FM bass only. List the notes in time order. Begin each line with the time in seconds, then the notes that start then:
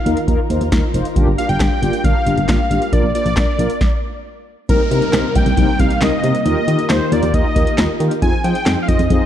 0.06 D#2
0.28 D#2
0.50 D#2
0.61 D#2
0.72 D#2
0.94 F1
1.16 G1
1.27 G1
1.49 G1
1.60 G1
1.82 G1
2.04 G1
2.26 G1
2.38 G1
2.49 G1
2.71 G#1
2.93 A#1
3.04 A#1
3.26 A#1
3.37 A#1
3.59 A#1
4.69 C2
4.91 C3
5.13 C2
5.35 C2
5.46 C2
5.57 C2
5.79 C2
6.01 C2
6.24 C3
6.46 D#2
6.68 D#3
6.90 D#2
7.12 D#2
7.23 D#2
7.34 D#2
7.56 D#2
7.78 D#2
8.00 D#3
8.22 F2
8.44 F3
8.66 F2
8.88 F2
8.99 F2
9.10 F2